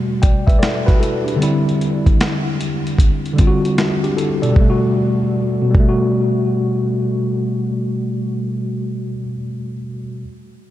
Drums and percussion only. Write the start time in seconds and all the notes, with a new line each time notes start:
0.23 kick, closed hi-hat
0.47 kick, closed hi-hat
0.63 snare, closed hi-hat
0.88 kick, snare, closed hi-hat
1.03 closed hi-hat
1.28 closed hi-hat
1.42 closed hi-hat
1.69 closed hi-hat
1.81 closed hi-hat
2.06 kick, closed hi-hat
2.21 snare, closed hi-hat
2.61 closed hi-hat
2.87 closed hi-hat
2.99 kick, closed hi-hat
3.26 closed hi-hat
3.38 kick, closed hi-hat
3.65 closed hi-hat
3.78 snare, closed hi-hat
4.04 closed hi-hat
4.18 closed hi-hat
4.43 closed hi-hat
4.56 kick
5.75 kick